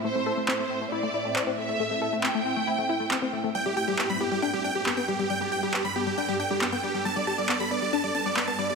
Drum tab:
CP |--x---x-|--x---x-|--x---x-|--x---x-|

CP |--x---x-|